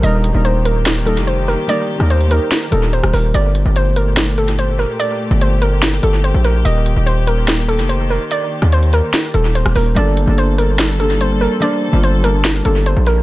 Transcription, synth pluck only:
\new Staff \with { instrumentName = "Synth pluck" } { \time 4/4 \key g \minor \tempo 4 = 145 ees''4 c''8 bes'8 r8 a'8 c''8 bes'8 | d''4 c''8 bes'8 r8 a'8 c''8 bes'8 | d''4 c''8 bes'8 r8 a'8 c''8 bes'8 | d''4 c''8 bes'8 r8 a'8 c''8 bes'8 |
ees''4 c''8 bes'8 r8 a'8 c''8 bes'8 | d''4 c''8 bes'8 r8 a'8 c''8 bes'8 | d''4 c''8 bes'8 r8 a'8 c''8 bes'8 | d''4 c''8 bes'8 r8 a'8 c''8 bes'8 | }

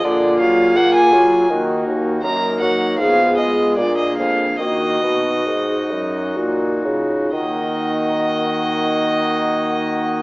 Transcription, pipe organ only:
<<
  \new Staff \with { instrumentName = "Pipe organ" } { \time 3/4 \key ees \minor \tempo 4 = 71 <bes f' aes'>2 <bes ees' ges'>4 | <bes ees' bes'>4 <ces' f' aes'>4 <bes d' aes'>4 | <bes ees' ges'>2. | <ees bes ees' ges' ees''>2. | }
  \new Staff \with { instrumentName = "Pipe organ" } { \clef bass \time 3/4 \key ees \minor d8 ges8 bes8 ges8 ees8 ees,8 | ges,8 ges8 aes,8 aes8 bes,8 f,8 | ees8 ces8 aes,8 ges,8 bes,8 des8 | r2. | }
>>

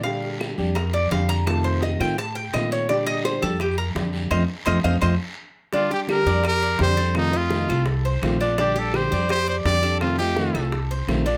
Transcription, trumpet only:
\new Staff \with { instrumentName = "Trumpet" } { \time 4/4 \key bes \major \tempo 4 = 169 r1 | r1 | r1 | r1 |
f'8 g'8 bes'4 bes'4 c''4 | ees'8 f'4. r2 | g'8 a'8 c''4 c''8 c''8 d''4 | f'8 g'4. r2 | }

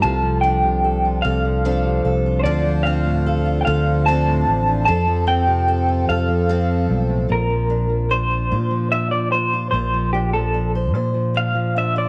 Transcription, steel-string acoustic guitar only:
\new Staff \with { instrumentName = "Steel-string acoustic guitar" } { \clef bass \time 6/8 \key bes \lydian \tempo 4. = 50 << { r8 d'8 a'16 f'8. d'8 a'16 f'16 | r8 c'8 a'16 f'8. c'4 | r8 c'8 a'16 f'8. c'4 | f'8 d'8 d'16 f'16 f'8 d'8 d'16 f'16 |
f'8 d'8 d'16 c''16 c''8 d'8 d'16 c''16 | } \\ { c16 f8 c8. c16 f8 c8. | d16 f8 a,8. d16 f8 a,16 d16 e16 | f,16 f8 c8. f,16 f8. g,16 a,16 | bes,16 f8 f8. bes,16 f8 f8. |
bes,16 f8 f8. bes,16 f8 f8. | } >> }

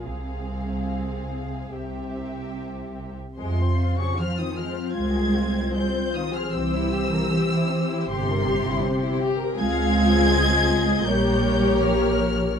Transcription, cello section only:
\new Staff \with { instrumentName = "Cello section" } { \clef bass \time 4/4 \key f \minor \tempo 4 = 76 c2 c4.~ c16 r16 | c8. des16 f16 ees16 f8 aes4 g8 ees16 f16 | e2 c4. r8 | aes2 g4 f4 | }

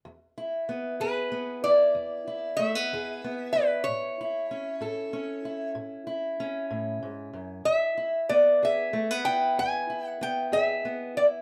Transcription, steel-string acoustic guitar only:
\new Staff \with { instrumentName = "Steel-string acoustic guitar" } { \time 12/8 \key e \major \tempo 4. = 63 << { r8 e'8 b8 gis'8 b8 e'4 e'8 a16 b16 gis'8 b8 e'8 | r8 e'8 cis'8 a'8 cis'8 e'4 e'8 cis'2 | r8 e'8 b8 gis'8 a16 b16 e'4 e'8 b8 gis'8 b8 e'8 | } \\ { e,4 r8 e,4 r8 e,4 r8 e,4 r8 | a,4 r8 a,4 r8 a,4 r8 a,8 gis,8 fis,8 | e,4 r8 e,4 r8 e,4 r8 e,4 r8 | } >> }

